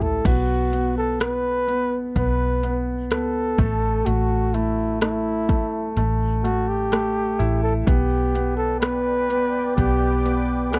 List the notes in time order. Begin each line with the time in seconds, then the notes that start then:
Already playing: A1 A3 E4
0.02 A4, floor tom
0.25 B1 B3 F#4, kick, closed hi-hat, crash
0.73 B3, closed hi-hat
0.98 A4
1.20 B3 B4, cross-stick, closed hi-hat
1.68 B3, closed hi-hat
2.16 B1 B3 B4, kick, closed hi-hat
2.63 B3, closed hi-hat
3.11 C#2 B3 A4, cross-stick, closed hi-hat
3.58 A1 A3, kick, closed hi-hat
4.06 A1 A3 F#4, closed hi-hat
4.54 A3 E4, closed hi-hat
5.01 A3 E4, cross-stick, closed hi-hat
5.49 A3, kick, closed hi-hat
5.97 A1 A3, closed hi-hat
6.44 A3 F#4, closed hi-hat
6.68 G4
6.92 A3, cross-stick, closed hi-hat
7.39 A1 E4, closed hi-hat
7.63 A4
7.87 B1 B3 G4 B4 D5 G5 D6, kick, closed hi-hat
8.35 B3, closed hi-hat
8.57 A4
8.81 B3 B4, cross-stick, closed hi-hat
9.30 B3, closed hi-hat
9.76 B1 B3 G4, kick, closed hi-hat
10.25 B3, closed hi-hat
10.71 C#2 B3 A4, cross-stick, closed hi-hat